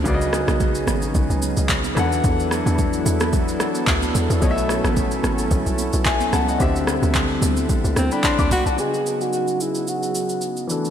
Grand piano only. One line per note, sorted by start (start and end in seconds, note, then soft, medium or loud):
0.04 1.92 C#3 medium
0.04 1.93 B3 medium
0.04 1.93 F#4 medium
0.04 0.14 D5 medium
0.14 1.97 D#5 medium
1.95 4.10 E3 medium
1.95 4.11 D4 medium
1.95 4.11 A4 medium
1.99 4.12 F#5 medium
4.40 6.02 B2 medium
4.40 6.02 A3 medium
4.40 6.03 C#5 medium
4.40 4.50 D#5 medium
4.51 6.05 E5 medium
6.06 6.32 E5 medium
6.06 6.32 G#5 medium
6.33 6.47 F#5 medium
6.33 6.47 A5 medium
6.48 6.74 D#5 medium
6.48 6.74 F#5 medium
6.58 8.73 D3 medium
6.58 8.74 C4 medium
6.58 8.75 G4 medium
6.58 8.75 E5 medium
8.12 8.24 G5 medium
8.12 8.23 B5 medium
8.24 8.39 A5 medium
8.24 8.38 C6 medium
8.39 8.49 B5 medium
8.39 8.51 D6 medium
8.51 8.66 G5 medium
8.51 8.65 B5 medium
8.66 8.92 F#5 medium
8.66 8.92 A5 medium
8.76 10.65 C#3 medium
8.76 10.65 B3 medium
8.76 10.66 F#4 medium
8.80 10.67 D#5 medium
10.67 10.90 E3 medium
10.67 10.90 D4 medium
10.67 10.90 F#4 medium
10.67 10.90 A4 medium